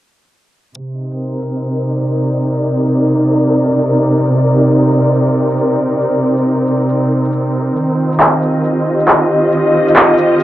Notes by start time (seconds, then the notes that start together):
0.76 C3, shaker
0.95 D#4
1.05 C4
1.11 shaker
1.19 A#4
1.42 shaker
1.64 shaker
1.76 D5
1.99 shaker
2.07 shaker
2.51 shaker
2.87 shaker
3.17 shaker
3.39 shaker
3.75 shaker
3.82 shaker
4.26 shaker
4.62 shaker
4.92 shaker
5.14 shaker
5.50 shaker
5.57 shaker
6.01 shaker
6.37 shaker
6.67 shaker
6.89 shaker
7.25 shaker
7.33 shaker
7.76 D#3, shaker
7.97 F4
8.09 D#5, shaker
8.20 clap
8.26 G4
8.42 shaker
8.64 shaker
9.00 shaker
9.08 clap, shaker
9.52 shaker
9.88 shaker
9.96 clap
10.18 shaker
10.40 shaker